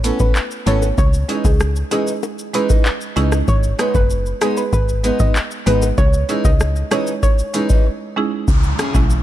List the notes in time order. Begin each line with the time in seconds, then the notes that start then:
Already playing: A1
0.04 A3 B3 C#4 E4 A4, closed hi-hat, shaker
0.20 A1 B3 C#4 A4 B4, kick, high bongo, shaker
0.35 clap, shaker
0.51 shaker
0.66 G#1 A3 B3 C#4 E4 A4 C#5, closed hi-hat, low bongo, shaker
0.82 high bongo, shaker
0.98 C#2 C#5, kick, high bongo, shaker
1.13 shaker
1.29 E3 G#3 C#4 D#4 E4 G#4, closed hi-hat, high bongo, shaker
1.45 C#2 G#4, kick, high bongo, shaker
1.60 cross-stick, shaker
1.76 shaker
1.91 E3 G#3 C#4 D#4 E4 G#4, closed hi-hat, low bongo, shaker
2.07 shaker
2.23 high bongo, shaker
2.39 shaker
2.53 E3 G#3 C#4 D#4 E4 G#4 B4, closed hi-hat, shaker
2.69 E3 G#3 D#4, kick, high bongo, shaker
2.85 clap, shaker
3.01 shaker
3.16 C#2 E3 G#3 C#4 D#4 E4 G#4, closed hi-hat, low bongo, shaker
3.32 cross-stick, high bongo, shaker
3.48 G#1 C#5, kick, high bongo, shaker
3.63 shaker
3.79 G#3 B3 D#4 G#4 B4, cross-stick, closed hi-hat, high bongo, shaker
3.95 F#1 B4, kick, high bongo, shaker
4.10 shaker
4.26 shaker
4.41 G#3 B3 D#4 G#4 B4, cross-stick, closed hi-hat, low bongo, shaker
4.57 B4, shaker
4.73 G#1 B4, kick, high bongo, shaker
4.89 shaker
5.04 G#3 B3 D#4 G#4 B4, closed hi-hat, shaker
5.20 G#1 G#3 B3 D#4 D#5, kick, high bongo, shaker
5.36 clap, shaker
5.51 shaker
5.66 G#1 G#3 B3 D#4 G#4 B4, closed hi-hat, low bongo, shaker
5.82 high bongo, shaker
5.98 C#2 C#5, kick, high bongo, shaker
6.14 shaker
6.29 E3 G#3 C#4 D#4 E4 G#4, closed hi-hat, high bongo, shaker
6.45 C#2 D#5, kick, high bongo, shaker
6.60 cross-stick, shaker
6.76 shaker
6.91 E3 G#3 C#4 D#4 E4 G#4 C#5, cross-stick, closed hi-hat, high bongo, low bongo, shaker
7.07 shaker
7.23 C#5, kick, high bongo, shaker
7.39 shaker
7.54 E3 G#3 C#4 D#4 E4 G#4, closed hi-hat, shaker
7.69 E3 G#3 D#4, kick, shaker
8.16 G#3 C#4 D#4 E4 G#4
8.48 C#2, kick, downlifter, shaker
8.63 shaker
8.79 C#4 E4 G#4, cross-stick, closed hi-hat, shaker
8.94 B1 E3 G#3 C#4 E4, kick, shaker
9.10 shaker